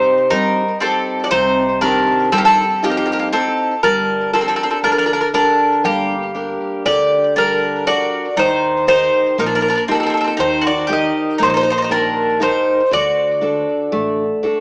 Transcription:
Already playing: C3 C4 D#4 G4 C5
0.30 G2 G3 D#4 A#4
0.80 C4 D#4 G4 A4
1.24 F#4 D5
1.31 C2 C3 D#4 C5
1.81 D#3 C4 D4 G4 A#4
2.32 G2 G3 C4 A4
2.38 A#3 G4
2.45 C4 A4
2.82 A#3 C4 D#4 G4
2.90 A#3 G4
2.97 A#3 G4
3.06 A#3 G4
3.12 A#3 G4
3.19 A#3 G4
3.33 C4 D#4 G4 A4
3.83 G1 G3 D4 A#4
4.33 C4 D4 G4 A4 A#4
4.41 C4 A4
4.48 C4 A4
4.56 C4 A4
4.63 C4 A4
4.70 C4 A4
4.83 D2 D3 D4 A#4
4.92 D4 A#4
4.98 D4 A#4
5.06 D4 A#4
5.13 D4 A#4
5.21 D4 A#4
5.34 D4 G4 A#4
5.84 G1 G3 A#3 G4
6.35 D4 G4 A#4
6.85 D2 D3 G4 D5
7.36 G3 D4 A#4
7.87 D4 F#4 A#4 D5
8.36 D#2 D#3 D#4 C5
8.87 D#4 G4 A#4 C5
9.38 A#1 A#3 D#4 A#4
9.46 D4 A#4
9.55 D4 A#4
9.61 D4 A#4
9.68 D4 A#4
9.75 D4 A#4
9.88 C4 D#4 G4 A4 A#4
9.95 C4
10.00 C4 A4
10.06 C4 A4
10.14 C4 A4
10.21 C4 A4
10.28 A4
10.37 D#2 D#3 D#4 C5
10.61 F#4
10.67 D5
10.87 D#4 G4 A#4
10.93 D#5
11.38 A#1 A#3 D#4
11.43 D#4 C5
11.50 C5
11.54 D#4 C5
11.61 D#4 C5
11.70 D#4 C5
11.78 D#4 C5
11.82 D#4 C5
11.89 D#3 D4 G4 A#4
12.40 D#4 G4 A#4 C5
12.91 D2 D3 F#4 D5
13.41 D4 F#4 A4
13.92 A1 A3
14.43 D4 F#4 A4

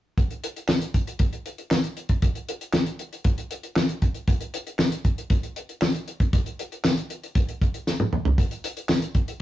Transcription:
0.18 kick, closed hi-hat
0.31 closed hi-hat
0.44 closed hi-hat
0.56 closed hi-hat
0.68 snare, clap, tambourine
0.82 closed hi-hat
0.94 kick, closed hi-hat
1.07 closed hi-hat
1.19 kick, closed hi-hat
1.33 closed hi-hat
1.46 closed hi-hat
1.58 closed hi-hat
1.71 snare, clap, tambourine
1.84 closed hi-hat
1.97 closed hi-hat
2.09 kick, closed hi-hat
2.22 kick, closed hi-hat
2.35 closed hi-hat
2.49 closed hi-hat
2.61 closed hi-hat
2.73 snare, clap, tambourine
2.86 closed hi-hat
2.99 closed hi-hat
3.13 closed hi-hat
3.24 kick, closed hi-hat
3.38 closed hi-hat
3.51 closed hi-hat
3.63 closed hi-hat
3.76 snare, clap, tambourine
3.89 closed hi-hat
4.02 kick, closed hi-hat
4.14 closed hi-hat
4.28 kick, closed hi-hat
4.41 closed hi-hat
4.54 closed hi-hat
4.67 closed hi-hat
4.79 snare, clap, tambourine
4.92 closed hi-hat
5.05 kick, closed hi-hat
5.18 closed hi-hat
5.30 kick, closed hi-hat
5.43 closed hi-hat
5.56 closed hi-hat
5.69 closed hi-hat
5.82 snare, clap, tambourine
5.95 closed hi-hat
6.08 closed hi-hat
6.20 kick, closed hi-hat
6.33 kick, closed hi-hat
6.46 closed hi-hat
6.59 closed hi-hat
6.72 closed hi-hat
6.84 snare, clap, tambourine
6.97 closed hi-hat
7.10 closed hi-hat
7.24 closed hi-hat
7.35 kick, closed hi-hat
7.49 closed hi-hat
7.62 kick, closed hi-hat
7.74 closed hi-hat
7.87 snare, tambourine
8.00 high tom
8.13 mid tom
8.25 floor tom
8.38 kick, closed hi-hat
8.51 closed hi-hat
8.64 closed hi-hat
8.77 closed hi-hat
8.89 snare, clap, tambourine
9.02 closed hi-hat
9.15 kick, closed hi-hat
9.28 closed hi-hat

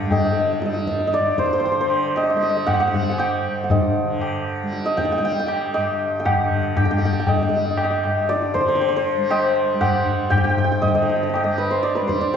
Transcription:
Already playing: G2 D3 G3 C5 D#5 G5
0.05 G3
0.11 D#5, tabla tin, tabla ge
0.19 D#5
0.25 D#5
0.32 D#5
0.40 D#5
0.47 D#5
0.53 D#5
0.60 G3 D#5, tabla te
0.66 D#5
0.73 D#5, tabla te
0.87 tabla ke
1.01 tabla te
1.07 D#5
1.13 D5, tabla te
1.19 G2
1.26 tabla te
1.38 C5, tabla ke
1.46 C5
1.51 C5, tabla te
1.60 C5
1.64 C5, tabla tin
1.72 C5
1.76 D3
1.81 C5
1.90 tabla na
2.16 D#5, tabla na
2.23 D#5
2.30 D#5
2.34 G3 D#5
2.43 D#5
2.50 D#5
2.57 D#5
2.66 F#5, tabla na, tabla ge
2.73 F#5
2.80 F#5
2.87 G3 F#5
2.93 F#5, tabla ge
3.03 F#5
3.10 F#5 G#5
3.18 G5, tabla na
3.48 G2
3.64 F#5
3.70 D#5, tabla tin, tabla ge
4.04 D3
4.21 tabla na
4.63 G3
4.73 tabla te
4.85 D#5, tabla te
4.97 G5, tabla ke
5.05 G5
5.10 G5, tabla te
5.18 G3 G5
5.23 G5, tabla tin
5.32 G5
5.40 G5
5.46 G5, tabla na
5.74 G2 D#5, tabla na
6.20 G5
6.25 F#5, tabla na, tabla ge
6.34 D3
6.51 tabla ge
6.77 G5, tabla na, tabla ge
6.85 G5
6.91 G3 G5
6.98 G5, tabla ge
7.05 G5
7.13 G5
7.20 G5
7.27 D#5, tabla tin, tabla ge
7.36 D#5
7.42 D#5
7.47 G3 D#5
7.57 D#5
7.65 D#5
7.71 D#5
7.77 D#5, tabla na
7.84 D#5
7.91 D#5
8.04 G2, tabla na
8.29 D5, tabla te
8.42 tabla te
8.54 C5, tabla ke
8.60 D3 C5
8.67 C5, tabla te
8.75 C5
8.81 C5, tabla tin
8.89 C5
8.96 C5
9.17 G3
9.31 D#5, tabla na
9.56 tabla na
9.74 G3
9.81 F#5, tabla na, tabla ge
10.06 tabla ge
10.30 G2 G5, tabla na, tabla ge
10.38 G5
10.44 G5
10.50 G5
10.57 G5, tabla ge
10.64 G5
10.72 G5
10.82 D#5, tabla tin, tabla ge
10.87 D3 D#5
10.95 D#5
11.02 D#5
11.09 D#5
11.16 D#5
11.23 D#5
11.29 D#5
11.34 D#5, tabla na
11.44 G3 D#5
11.58 B4
11.71 C5
11.83 D5, tabla te
11.95 B4, tabla te
12.01 G3
12.07 C5, tabla ke
12.21 D5, tabla te
12.34 C5

